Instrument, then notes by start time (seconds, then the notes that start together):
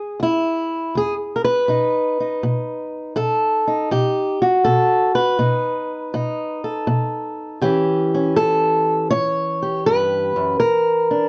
steel-string acoustic guitar
Already playing: E2 G#4
0.20 E2 E4
0.95 E2 G#4
1.36 A#4
1.44 B4
1.68 B2 D#4
2.20 D#4
2.43 B2
3.16 B2 A4
3.67 D#4
3.91 B2 G4
4.42 F#4
4.64 B2 A4
5.15 B4
5.39 B2 D#4
6.14 B2 D#4
6.64 A4
6.87 B2
7.61 A2 E3 C#4 G4
8.14 C#4
8.36 A2 A4
9.11 A2 C#5
9.62 G4
9.86 G2 B4
10.36 F#2
10.60 E2 A#4
11.11 D4